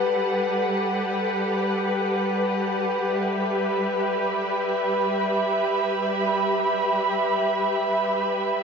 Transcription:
Already playing: G3 G4 A4 B4 F#5 B5
3.09 E5
3.36 B5

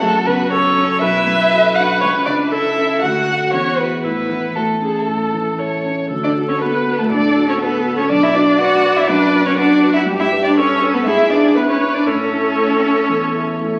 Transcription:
0.01 F#2 A3 F#4 A4
0.26 C#3 B3 B4
0.51 C#4 F#4 A4 C#5
0.77 C#4
1.01 B1 E4 B4 E5
1.27 F#2
1.51 F#4 A4
1.76 D4 F#4 F#5
2.01 C#2 C#4 C#5
2.25 C#3 D4 D5
2.50 E4 A4 E5
2.77 C#4
3.02 D2 F#4 F#5
3.28 F#4 A4
3.53 E2 C#4 C#5
3.78 B3 E4 G#4 B4
4.03 A2 B3 E4 B4
4.30 E3
4.55 A3 E4 F#4 A4
4.81 C#4 G#4
5.07 A2 A4
5.33 E3
5.58 E4 A4 C#5
5.85 C#4
6.10 D2 A4
6.23 D4 D5
6.35 F#4 A4
6.48 C#4 C#5
6.60 B3 D4 F#4 A4 B4
6.85 F#4 A4
6.99 A3 A4
7.10 A2 D4 A4 D5
7.35 F#4 A4
7.48 C#4 C#5
7.59 B3 D4 F#4 A4 B4
7.84 F#4 A4
7.97 C#4 C#5
8.09 B1 D4 D5
8.23 E4 E5
8.34 D4 F#4 B4 D5
8.59 D4 F#4 B4 F#5
8.84 F#4 B4
8.96 E4 E5
9.09 F#2 D4 B4 D5
9.33 F#4 B4
9.46 C#4 C#5
9.57 D4 F#4 B4 D5
9.82 F#4 B4
9.93 E4 E5
10.06 G2 G4
10.19 E4 E5
10.31 G4 B4
10.44 D4 D5
10.56 C#4 D4 G4 A4 B4 C#5
10.81 G4 B4
10.93 B3 B4
11.06 G#2 E4 G#4 E5
11.30 D4 E4 B4 D5
11.55 B3 D4 E4 B4
11.68 C#4 C#5
11.81 E4 B4
11.94 D4 D5
12.06 A2 C#4 A4 C#5
12.33 E4 A4
12.57 A3 E4 A4
12.83 E4
13.09 E2
13.34 E4 A4
13.60 A3 E4 A4

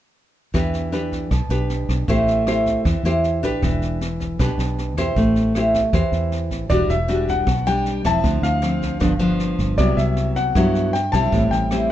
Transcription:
0.54 E2 E3 D4 G4 B4, kick, cross-stick, snare
0.74 snare
0.92 D4 G4 B4, snare
1.12 kick, snare
1.31 B1 B2, kick, cross-stick, snare
1.49 B1 D4 G4 B4, snare
1.70 snare
1.89 B1, kick, cross-stick, snare
2.08 A1 A3 E4 G4 C5, kick, snare
2.27 snare
2.47 E4 G4 C5, cross-stick, snare
2.66 kick, snare
2.85 E2 E3, kick, cross-stick, snare
3.03 E2 E4 G4 C5, snare
3.24 snare
3.43 A1 D4 G4 B4, kick, snare
3.62 E1 E3, kick, cross-stick, snare
3.82 snare
4.01 snare
4.20 kick, snare
4.39 B1 B2 D4 G4 B4, kick, cross-stick, snare
4.58 B1, snare
4.78 snare
4.97 E2 E4 G4 C5, kick, cross-stick, snare
5.16 A1 A3, kick, snare
5.36 snare
5.55 E4 G4 C5, cross-stick, snare
5.74 kick, snare
5.93 E2 E3 E4 G4 C5, kick, cross-stick, snare
6.12 E2, snare
6.32 snare
6.51 A1, kick, snare
6.69 E1 E3 G3 D4 F#4 D5, kick, cross-stick, snare
6.88 E1 E5, snare
7.08 G3 D4 F#4, snare
7.28 F#5, kick, snare
7.47 B1 B2, kick, cross-stick, snare
7.66 G3 D4 G5, snare
7.86 snare
8.05 E1 F3 C4 E4 A5, kick, cross-stick, snare
8.24 D2 D3, kick, snare
8.42 D2 F5, snare
8.62 F3 C4, cross-stick, snare
8.82 kick, snare
9.00 G1 G2 F3 B3 D4, kick, cross-stick, snare
9.19 F3 B3 D4, snare
9.39 snare
9.59 G1, kick, snare
9.78 C2 C3 F#3 B3 E4 D5, kick, cross-stick, snare
9.97 C2 E5, snare
10.16 snare
10.36 F#5, kick, snare
10.55 G2 F#3 B3 E4, kick, cross-stick, snare
10.75 snare
10.93 G5, snare
11.12 B1 G3 C4 E4 A5, kick, cross-stick, snare
11.32 A1 A2, kick, snare
11.51 A1 G5, snare
11.71 G3 C4 E4, cross-stick, snare

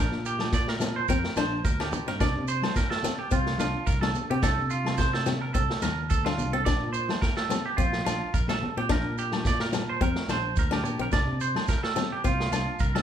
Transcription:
Already playing: A#1
0.00 D4 A#4
0.12 A#2, snare
0.26 G4, shekere
0.39 snare, high conga, low agogo
0.52 D5, kick, snare, low conga, shekere
0.68 A#4, snare
0.80 C4, snare, high conga, low conga, low agogo, shekere
0.96 C5
1.09 F2 C4 A#4, kick, snare, shekere
1.24 snare
1.36 A#1 D4 C5, snare, high conga, low agogo, shekere
1.65 D2 A#4, kick, snare, shekere
1.80 D4 G4, snare, low agogo
1.92 A#2, low conga, shekere
2.08 G2 C4 A#4, snare
2.20 C2 D4 D5, kick, snare, low agogo, shekere
2.37 C3
2.48 C5, shekere
2.62 snare, high conga, low agogo
2.75 A#4, kick, snare, low conga, shekere
2.90 A4, snare
3.03 C4, snare, low conga, low agogo, shekere
3.19 G4
3.31 C2 C4 F4, kick, shekere
3.46 snare
3.58 C2 D4 F4, snare, high conga, low agogo, shekere
3.87 C2 A#4, kick, snare, shekere
4.01 D4 A4, snare, high conga, low agogo
4.15 low conga, shekere
4.30 C3 C4 G4
4.42 C2 D4 A4, kick, snare, low agogo, shekere
4.58 C3
4.70 F4, shekere
4.85 snare, high conga, low agogo
4.98 C5, kick, snare, low conga, shekere
5.13 A4, snare
5.26 C4, snare, high conga, low conga, low agogo, shekere
5.41 A#4
5.54 C2 C4 A4, kick, shekere
5.70 snare
5.82 D#2 A3 A#4, snare, high conga, low conga, low agogo, shekere
6.10 D2 A4, kick, shekere
6.25 D4 F4, snare, high conga, low agogo
6.38 C2, low conga, shekere
6.53 C4 A4
6.65 A#1 D4 D5, kick, snare, low agogo, shekere
6.83 A#2
6.93 C5, shekere
7.09 snare, high conga, low agogo
7.22 A#4, kick, snare, low conga, shekere
7.37 A4, snare
7.50 C4, snare, high conga, low conga, low agogo, shekere
7.66 G4
7.77 A#1 C4 F4, kick, shekere
7.93 snare
8.05 A#1 D4 F4, snare, high conga, low agogo, shekere
8.34 A#1 A#4, kick, shekere
8.48 A4, muted steel-string acoustic guitar stroke, snare, high conga, low agogo
8.62 low conga
8.77 A#2 C4 G4
8.89 A#1 D4 A#4, kick, snare, low agogo, shekere
9.05 A#2
9.18 G4, shekere
9.32 snare, high conga, low agogo
9.44 D5, kick, snare, low conga, shekere
9.60 A#4, snare
9.72 muted steel-string acoustic guitar stroke, snare, high conga, low conga, low agogo, shekere
9.89 C5
10.01 F2 C4 A#4, kick, shekere
10.16 snare
10.28 A#1 D4 C5, snare, high conga, low agogo, shekere
10.56 D2 A#4, kick, shekere
10.71 D4 G4, snare, high conga, low agogo
10.83 A#2, low conga, shekere
10.99 A#1 C4 A#4
11.12 C2 D4 D5, kick, snare, low agogo, shekere
11.27 C3
11.41 C5, shekere
11.55 snare, high conga, low agogo
11.68 A#4, kick, snare, low conga, shekere
11.83 A4, snare
11.96 C4, snare, high conga, low conga, low agogo, shekere
12.12 G4
12.24 C2 C4 F4, kick, snare, shekere
12.40 snare
12.51 C2 D4 F4, snare, high conga, low agogo, shekere
12.79 C2 A#4, kick, shekere
12.95 D4 A4, snare, high conga, low agogo

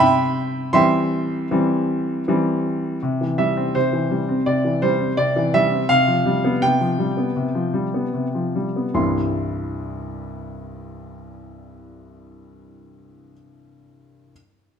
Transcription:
Already playing: C3 E5 G5 B5
0.73 E3 G3 C4 E5 G5 C6
1.51 E3 G3 C4
2.28 E3 G3 C4
3.03 C3
3.21 E3
3.38 G3 E5
3.57 C4
3.75 C3 C5
3.93 E3
4.11 G3
4.29 C4
4.46 C3 D5
4.65 E3
4.82 G3 C5
5.01 C4
5.17 C3 D5
5.36 E3
5.54 G3 E5
5.72 C4
5.89 C3 F5
6.08 F3
6.26 G3
6.45 B3
6.62 C3 G5
6.81 F3
6.99 G3
7.17 B3
7.36 C3
7.55 F3
7.74 G3
7.94 B3
8.14 C3
8.35 F3
8.55 G3
8.76 B3
8.94 C2 G2 E3 G3 C4 E4 C6

